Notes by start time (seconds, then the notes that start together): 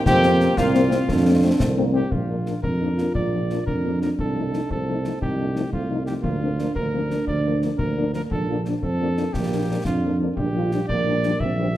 0.06 F2 A#3 C4 G4 G5, concert bass drum, snare
0.23 A#3 C4, snare
0.40 A#3 C4, snare
0.57 C2 A#3 C4 F4 F5, concert bass drum, snare
0.74 A#3 C4, snare
0.90 A#3 C4, snare
1.07 F2 A3 C4 D4, concert bass drum, snare
1.26 A3 C4
1.43 A3 C4
1.59 C2 C4, concert bass drum, snare
1.77 A3 A#3 C4
1.93 A3 C4 G4
2.11 A#1 F4, concert bass drum
2.29 F3 A#3 D4
2.46 F3 A#3 D4, snare
2.62 F2 D4 A#4, concert bass drum
2.79 F3 A#3 D4 D#4
2.96 F3 F4, snare
3.00 A#3 D4
3.15 A#1 D5, concert bass drum
3.34 F3 A#3 D4
3.50 F3 A#3 D4, snare
3.66 F2 D4 A#4, concert bass drum
3.85 F3 A#3 D4
4.02 F3 A#3 D4 A#4, snare
4.19 C2 A4, concert bass drum
4.36 F3 A3 D#4
4.52 F3 A3 D#4, snare
4.69 C2 C4 A4, concert bass drum
4.88 F3 A3 D#4
5.04 F3 A3 D#4, snare
5.21 C2 D#4 G4, concert bass drum
5.38 F3 A3 D4 D#4
5.55 F3 A3 C4 D#4, snare
5.72 C2 A3 F4, concert bass drum
5.90 F3 A3 D#4
6.06 F3 A3 D#4 G4, snare
6.22 D2 A#3 F4, concert bass drum
6.41 F3 A#3 C4 D4
6.57 F3 A#3 D4, snare
6.74 D2 A#3 A#4, concert bass drum
6.93 F3 A#3 C4 D4
7.09 F3 A#3 D4, snare
7.27 D2 D5, concert bass drum
7.46 F3 A#3 D4
7.62 F3 A#3 D4, snare
7.78 D2 A#3 A#4, concert bass drum
7.98 F3 A#3 D4
8.14 F3 A#3 D4 A#4, snare
8.31 A#1 D4 A4, concert bass drum
8.49 F3 A#3 D4 F4
8.65 F3 A#3 D4, snare
8.81 F2 C4 A4, concert bass drum
9.01 F3 A#3 D4
9.17 F3 A#3 D4, snare
9.33 A#1 A#3 G4, concert bass drum, snare
9.53 F3 A#3 D4
9.71 F3 A#3 D4
9.85 F2 D4 F4, concert bass drum, snare
10.05 F3 A#3 D4
10.21 F3 A#3 D4
10.36 A#1 D4 G4, concert bass drum
10.55 F3 G3 D4 F4
10.71 F3 G3 D4, snare
10.88 A#1 A#3 D5, concert bass drum
11.07 F3 G3 D4
11.23 F3 G3 D4, snare
11.40 A#1 C4 E5, concert bass drum
11.59 E3 G3 C4 D4